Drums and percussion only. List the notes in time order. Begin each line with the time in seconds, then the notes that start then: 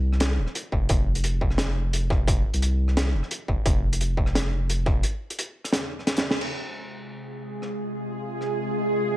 0.13 cross-stick
0.20 snare, closed hi-hat
0.47 cross-stick
0.55 closed hi-hat
0.72 kick
0.89 kick, closed hi-hat
1.15 closed hi-hat
1.24 closed hi-hat
1.41 kick
1.50 cross-stick
1.58 snare, closed hi-hat
1.93 closed hi-hat
2.10 kick, cross-stick
2.28 kick, closed hi-hat
2.54 closed hi-hat
2.62 closed hi-hat
2.88 cross-stick
2.97 snare, closed hi-hat
3.23 cross-stick
3.31 closed hi-hat
3.48 kick
3.66 kick, closed hi-hat
3.93 closed hi-hat
4.01 closed hi-hat
4.17 kick
4.26 cross-stick
4.35 snare, closed hi-hat
4.70 closed hi-hat
4.86 kick, cross-stick
5.03 closed hi-hat
5.30 closed hi-hat
5.39 closed hi-hat
5.64 cross-stick, closed hi-hat
5.73 snare, closed hi-hat
5.99 cross-stick
6.07 snare, closed hi-hat
6.16 snare, closed hi-hat
6.31 snare
6.41 crash
7.62 cross-stick
8.41 cross-stick